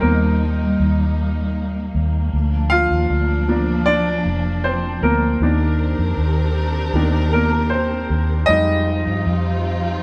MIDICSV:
0, 0, Header, 1, 4, 480
1, 0, Start_track
1, 0, Tempo, 769231
1, 1457, Time_signature, 4, 2, 24, 8
1, 6258, End_track
2, 0, Start_track
2, 0, Title_t, "String section"
2, 0, Program_c, 0, 48
2, 0, Note_on_c, 0, 55, 63
2, 0, Note_on_c, 0, 58, 63
2, 0, Note_on_c, 0, 63, 63
2, 1433, Note_off_c, 0, 63, 0
2, 1438, Note_off_c, 0, 55, 0
2, 1457, Note_on_c, 0, 62, 72
2, 1459, Note_on_c, 0, 53, 67
2, 3355, Note_off_c, 0, 58, 0
2, 3358, Note_off_c, 0, 62, 0
2, 3359, Note_off_c, 0, 53, 0
2, 3374, Note_on_c, 0, 62, 59
2, 3374, Note_on_c, 0, 70, 80
2, 3375, Note_on_c, 0, 51, 65
2, 3375, Note_on_c, 0, 67, 62
2, 3377, Note_on_c, 0, 60, 59
2, 5276, Note_off_c, 0, 62, 0
2, 5277, Note_off_c, 0, 51, 0
2, 5277, Note_off_c, 0, 67, 0
2, 5277, Note_off_c, 0, 70, 0
2, 5278, Note_off_c, 0, 60, 0
2, 5299, Note_on_c, 0, 53, 68
2, 5300, Note_on_c, 0, 67, 59
2, 5301, Note_on_c, 0, 60, 55
2, 5301, Note_on_c, 0, 63, 60
2, 5302, Note_on_c, 0, 65, 75
2, 6258, Note_off_c, 0, 53, 0
2, 6258, Note_off_c, 0, 60, 0
2, 6258, Note_off_c, 0, 63, 0
2, 6258, Note_off_c, 0, 65, 0
2, 6258, Note_off_c, 0, 67, 0
2, 6258, End_track
3, 0, Start_track
3, 0, Title_t, "Grand piano"
3, 0, Program_c, 1, 0
3, 0, Control_c, 1, 64, 127
3, 0, Note_on_c, 1, 55, 50
3, 0, Note_on_c, 1, 58, 48
3, 0, Note_on_c, 1, 60, 68
3, 0, Note_on_c, 1, 63, 57
3, 0, Note_on_c, 1, 72, 83
3, 4, Note_on_c, 1, 70, 67
3, 18, Note_off_c, 1, 58, 0
3, 18, Note_on_c, 1, 58, 52
3, 706, Note_off_c, 1, 70, 0
3, 713, Note_off_c, 1, 58, 0
3, 1429, Note_off_c, 1, 55, 0
3, 1434, Note_off_c, 1, 63, 0
3, 1466, Note_off_c, 1, 60, 0
3, 1466, Control_c, 1, 64, 0
3, 1470, Note_off_c, 1, 72, 0
3, 1565, Control_c, 1, 64, 127
3, 1683, Note_on_c, 1, 77, 102
3, 1697, Note_on_c, 1, 65, 71
3, 2173, Note_on_c, 1, 53, 51
3, 2177, Note_on_c, 1, 58, 44
3, 2180, Note_on_c, 1, 62, 52
3, 2392, Note_off_c, 1, 65, 0
3, 2407, Note_on_c, 1, 74, 87
3, 2414, Note_off_c, 1, 62, 0
3, 2423, Note_on_c, 1, 62, 67
3, 2432, Note_off_c, 1, 77, 0
3, 2867, Note_off_c, 1, 74, 0
3, 2875, Note_off_c, 1, 62, 0
3, 2895, Note_on_c, 1, 72, 75
3, 2903, Note_on_c, 1, 60, 60
3, 3124, Note_off_c, 1, 60, 0
3, 3136, Note_off_c, 1, 58, 0
3, 3138, Note_on_c, 1, 70, 69
3, 3144, Note_off_c, 1, 72, 0
3, 3146, Note_on_c, 1, 58, 54
3, 3350, Note_off_c, 1, 53, 0
3, 3378, Note_off_c, 1, 58, 0
3, 3382, Note_on_c, 1, 51, 50
3, 3386, Control_c, 1, 64, 0
3, 3387, Note_on_c, 1, 58, 47
3, 3390, Note_on_c, 1, 62, 54
3, 3484, Control_c, 1, 64, 127
3, 3832, Note_off_c, 1, 70, 0
3, 4075, Note_off_c, 1, 51, 0
3, 4077, Note_off_c, 1, 58, 0
3, 4078, Note_off_c, 1, 62, 0
3, 4335, Note_on_c, 1, 51, 45
3, 4340, Note_on_c, 1, 58, 38
3, 4340, Note_on_c, 1, 62, 48
3, 4552, Note_off_c, 1, 51, 0
3, 4554, Note_off_c, 1, 62, 0
3, 4555, Note_off_c, 1, 58, 0
3, 4572, Note_on_c, 1, 70, 67
3, 4588, Note_on_c, 1, 58, 51
3, 4798, Note_off_c, 1, 70, 0
3, 4803, Note_on_c, 1, 72, 70
3, 4806, Note_off_c, 1, 58, 0
3, 4827, Note_on_c, 1, 60, 56
3, 5277, Note_off_c, 1, 60, 0
3, 5279, Note_on_c, 1, 75, 93
3, 5294, Note_on_c, 1, 55, 50
3, 5300, Note_on_c, 1, 56, 45
3, 5304, Note_on_c, 1, 63, 67
3, 5305, Note_off_c, 1, 72, 0
3, 5306, Control_c, 1, 64, 0
3, 5399, Control_c, 1, 64, 127
3, 5615, Note_off_c, 1, 55, 0
3, 5618, Note_off_c, 1, 56, 0
3, 5983, Note_off_c, 1, 75, 0
3, 5996, Note_off_c, 1, 63, 0
3, 6258, End_track
4, 0, Start_track
4, 0, Title_t, "Fingered electric bass"
4, 0, Program_c, 2, 33
4, 16, Note_on_c, 2, 39, 83
4, 472, Note_off_c, 2, 39, 0
4, 496, Note_on_c, 2, 39, 90
4, 1192, Note_off_c, 2, 39, 0
4, 1214, Note_on_c, 2, 39, 83
4, 1439, Note_off_c, 2, 39, 0
4, 1456, Note_on_c, 2, 38, 99
4, 1792, Note_off_c, 2, 38, 0
4, 1813, Note_on_c, 2, 39, 72
4, 1927, Note_off_c, 2, 39, 0
4, 1935, Note_on_c, 2, 38, 86
4, 2631, Note_off_c, 2, 38, 0
4, 2654, Note_on_c, 2, 29, 74
4, 3111, Note_off_c, 2, 29, 0
4, 3133, Note_on_c, 2, 38, 70
4, 3358, Note_off_c, 2, 38, 0
4, 3372, Note_on_c, 2, 39, 89
4, 3709, Note_off_c, 2, 39, 0
4, 3735, Note_on_c, 2, 41, 74
4, 3848, Note_off_c, 2, 41, 0
4, 3852, Note_on_c, 2, 39, 87
4, 4310, Note_off_c, 2, 39, 0
4, 4329, Note_on_c, 2, 39, 96
4, 5028, Note_off_c, 2, 39, 0
4, 5055, Note_on_c, 2, 39, 83
4, 5279, Note_off_c, 2, 39, 0
4, 5296, Note_on_c, 2, 41, 92
4, 5631, Note_off_c, 2, 41, 0
4, 5657, Note_on_c, 2, 43, 68
4, 5769, Note_off_c, 2, 43, 0
4, 5778, Note_on_c, 2, 41, 90
4, 6233, Note_off_c, 2, 41, 0
4, 6258, End_track
0, 0, End_of_file